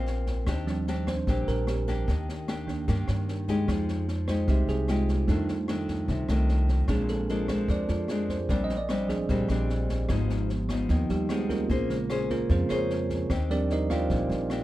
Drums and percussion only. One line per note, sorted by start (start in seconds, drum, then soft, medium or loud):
0.07 snare soft
0.27 kick soft
0.27 snare soft
0.47 kick medium
0.47 cross-stick medium
0.47 snare soft
0.67 snare soft
0.87 snare soft
1.07 kick soft
1.07 cross-stick medium
1.07 snare soft
1.27 kick medium
1.27 snare soft
1.47 snare soft
1.67 cross-stick medium
1.67 snare soft
1.88 kick soft
1.88 snare soft
2.08 kick medium
2.08 snare soft
2.29 snare soft
2.48 cross-stick medium
2.48 snare soft
2.68 kick soft
2.68 snare soft
2.88 kick medium
2.88 snare soft
3.08 cross-stick medium
3.08 snare soft
3.28 snare soft
3.48 kick soft
3.48 snare soft
3.68 kick medium
3.68 cross-stick medium
3.68 snare soft
3.88 snare soft
4.08 snare soft
4.28 kick soft
4.28 cross-stick medium
4.28 snare soft
4.48 kick medium
4.48 snare soft
4.68 snare soft
4.88 cross-stick medium
4.88 snare soft
5.08 kick soft
5.08 snare soft
5.28 kick medium
5.28 snare soft
5.48 snare soft
5.68 cross-stick medium
5.68 snare soft
5.88 kick soft
5.88 snare soft
6.08 kick soft
6.08 snare soft
6.29 cross-stick medium
6.29 snare soft
6.49 snare soft
6.68 kick soft
6.68 snare soft
6.88 kick medium
6.88 cross-stick medium
6.88 snare soft
7.08 snare soft
7.29 snare soft
7.48 kick soft
7.48 cross-stick medium
7.48 snare soft
7.68 kick medium
7.68 snare soft
7.88 snare soft
8.08 cross-stick medium
8.08 snare soft
8.29 kick soft
8.29 snare soft
8.49 kick medium
8.49 snare soft
8.69 snare soft
8.89 cross-stick medium
8.89 snare soft
9.09 kick soft
9.09 snare soft
9.29 kick medium
9.29 snare soft
9.49 cross-stick medium
9.49 snare soft
9.69 snare soft
9.89 kick soft
9.89 snare soft
10.09 kick medium
10.09 cross-stick medium
10.09 snare soft
10.30 snare soft
10.49 snare soft
10.69 kick soft
10.69 cross-stick medium
10.69 snare soft
10.89 kick medium
10.89 snare soft
11.09 snare soft
11.29 cross-stick medium
11.29 snare soft
11.49 kick soft
11.49 snare soft
11.70 kick medium
11.70 snare soft
11.89 snare soft
12.10 cross-stick medium
12.10 snare soft
12.30 kick soft
12.30 snare soft
12.49 kick medium
12.49 snare soft
12.69 cross-stick medium
12.69 snare soft
12.90 snare soft
13.10 kick soft
13.10 snare soft
13.30 kick medium
13.30 cross-stick medium
13.30 snare soft
13.50 snare soft
13.70 snare soft
13.90 kick soft
13.90 cross-stick medium
13.90 snare soft
14.10 kick medium
14.10 snare soft
14.30 snare soft
14.50 cross-stick medium
14.50 snare soft